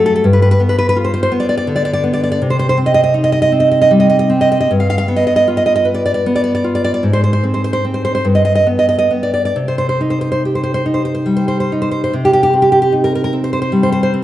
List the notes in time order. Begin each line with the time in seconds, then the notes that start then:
Already playing: F#2 F#3 A3
0.06 A4
0.16 A4
0.24 G2
0.33 B4
0.42 B4
0.51 B4
0.60 B3
0.69 B4
0.79 B4
0.89 B4
0.96 F4
1.05 C5
1.14 C5
1.23 C5
1.32 B3
1.40 D5
1.49 D5
1.57 D5
1.67 D3
1.76 D5
1.85 D5
1.93 D5
2.04 B3
2.13 D5
2.24 D5
2.32 D5
2.42 C3
2.50 C5
2.59 C5
2.69 C5
2.77 C4
2.86 D#5
2.94 D#5
3.04 D#5
3.14 D#4
3.24 D#5
3.32 D#5
3.42 D#5
3.52 C4
3.60 D#5
3.71 D#5
3.82 D#5
3.91 G3
4.00 D#5
4.10 D#5
4.19 D#5
4.30 C4
4.41 D#5
4.52 D#5
4.61 D#5
4.71 G2
4.80 F5
4.90 F5
4.98 F5
5.08 B3
5.16 D#5
5.27 D#5
5.36 D#5
5.48 F4
5.57 D#5
5.66 D#5
5.76 D#5
5.85 B4
5.95 D5
6.06 D5
6.14 D5
6.26 B3
6.36 D5
6.44 D5
6.55 D5
6.64 F4
6.75 D5
6.84 D5
6.94 D5
7.03 G#2
7.13 C5
7.24 C5
7.33 C5
7.43 C4
7.54 C5
7.64 C5
7.73 C5
7.85 C4
7.94 C5
8.05 C5
8.15 C5
8.25 G2
8.35 D#5
8.45 D#5
8.55 D#5
8.67 B3
8.79 D#5
8.89 D#5
8.98 D#5
9.11 B3
9.23 D5
9.34 D5
9.45 D5
9.56 C3
9.68 C5
9.78 C5
9.89 C5
10.01 D#4
10.10 C5
10.21 C5
10.32 C5
10.45 G4
10.55 C5
10.64 C5
10.74 C5
10.86 D#4
10.94 C5
11.05 C5
11.15 C5
11.26 G3
11.37 C5
11.48 C5
11.60 C5
11.72 D#4
11.82 C5
11.91 C5
12.04 C5
12.13 C3
12.25 G4
12.33 G4
12.43 G4
12.53 C4
12.62 G4
12.72 G4
12.82 G4
12.92 D#4
13.04 A#4
13.15 A#4
13.24 A#4
13.33 C4
13.44 C5
13.53 C5
13.62 C5
13.72 G3
13.83 C5
13.92 C5
14.03 C5
14.14 C4